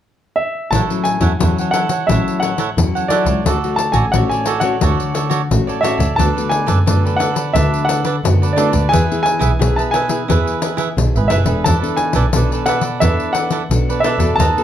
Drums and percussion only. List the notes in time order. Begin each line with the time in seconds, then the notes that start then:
0.73 pandeiro
0.90 pandeiro
1.05 pandeiro
1.21 pandeiro
1.41 pandeiro
1.58 pandeiro
1.74 pandeiro
1.89 pandeiro
2.09 pandeiro
2.28 pandeiro
2.43 pandeiro
2.58 pandeiro
2.78 pandeiro
2.96 pandeiro
3.10 pandeiro
3.26 pandeiro
3.46 pandeiro
3.64 pandeiro
3.79 pandeiro
3.93 pandeiro
4.14 pandeiro
4.31 pandeiro
4.46 pandeiro
4.61 pandeiro
4.81 pandeiro
5.00 pandeiro
5.15 pandeiro
5.31 pandeiro
5.51 pandeiro
5.69 pandeiro
5.84 pandeiro
6.00 pandeiro
6.19 pandeiro
6.38 pandeiro
6.51 pandeiro
6.68 pandeiro
6.87 pandeiro
7.06 pandeiro
7.20 pandeiro
7.36 pandeiro
7.56 pandeiro
7.74 pandeiro
7.89 pandeiro
8.05 pandeiro
8.25 pandeiro
8.43 pandeiro
8.58 pandeiro
8.73 pandeiro
8.93 pandeiro
9.12 pandeiro
9.26 pandeiro
9.41 pandeiro
9.62 pandeiro
9.79 pandeiro
9.94 pandeiro
10.09 pandeiro
10.30 pandeiro
10.47 pandeiro
10.62 pandeiro
10.78 pandeiro
10.98 pandeiro
11.16 pandeiro
11.30 pandeiro
11.46 pandeiro
11.66 pandeiro
11.84 pandeiro
11.97 pandeiro
12.13 pandeiro
12.33 pandeiro
12.52 pandeiro
12.66 pandeiro
12.81 pandeiro
13.01 pandeiro
13.20 pandeiro
13.35 pandeiro
13.50 pandeiro
13.71 pandeiro
13.90 pandeiro
14.04 pandeiro
14.20 pandeiro
14.40 pandeiro
14.58 pandeiro